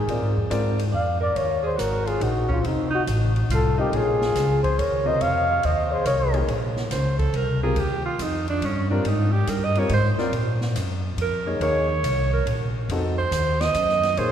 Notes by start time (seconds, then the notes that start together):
Already playing: G#4
0.07 A#2 C4 F4 A#4 D5, ride
0.22 G#2
0.37 F2
0.50 G#2 C4 F4 A#4 D5, hi-hat pedal, ride
0.79 ride
0.92 F2 D5 F5
1.21 A#4 D5
1.35 D#2 A#4 C#5, ride
1.63 G#4 C5
1.77 G#1 F#4 A#4, hi-hat pedal, ride
2.05 F4 G#4, ride
2.21 A#1 D#4 F#4, ride
2.48 C#4 F4, kick
2.62 F1 C4, ride
2.66 D#4
2.90 D#4 F#4
3.07 A1, hi-hat pedal, ride
3.36 ride
3.49 C2 F4, hi-hat pedal, ride
3.53 A4
3.78 C4 D#4 F4 G4 A#4 D#5
3.92 A#1 A#3 D#4 F4 G#4 C#5, ride
4.21 snare
4.35 C#2, snare, hi-hat pedal, ride
4.63 G#4 C5, kick, ride
4.78 D#2 A#4 C#5, ride
5.05 C3 F4 A#4 C5 D#5
5.20 F2 C#5 F5, ride
5.63 D#2 C5 D#5, ride
5.92 G#4 C5
6.05 C2 A#4 C#5, hi-hat pedal, ride
6.33 A#3 D#4 G#4 C#5, ride
6.48 A#1, ride
6.76 snare
6.90 C#2 C5, snare, hi-hat pedal, ride
7.19 A4, kick, ride
7.33 C2 A#4, ride
7.63 G3 C4 F4 G#4 A#4
7.76 D#2 G4, ride
8.06 F4
8.19 F2 D#4, hi-hat pedal, ride
8.48 D4, ride
8.62 G2 C#4, ride
8.90 G3 C4 D4 F4 A#4
9.04 G#2, ride
9.08 D#4
9.32 G4
9.47 G2 A#4, hi-hat pedal, ride
9.65 D#5
9.75 G3 C4 F4 A#4 C#5, ride
9.89 G#2, ride
9.94 C5
10.17 C4 F4 A#4 D5, muted upright bass stroke, snare
10.32 A#2, ride
10.61 snare
10.75 F#2, hi-hat pedal, ride
11.17 F2, ride
11.22 A#4
11.46 A#3 D#4 G#4 C#5
11.60 D#2 A#3 D#4 G#4 C#5, ride
12.03 C2, hi-hat pedal, ride
12.34 A#4
12.46 A#1, ride
12.89 F2 C4 D#4 F#4 A4, ride
13.18 C5
13.31 D#2, hi-hat pedal, ride
13.61 D#5, snare, ride
13.74 F#2, hi-hat pedal, ride
13.89 snare
14.03 snare, ride
14.17 A#2 A#3 D#4 G#4 C5 C#5, ride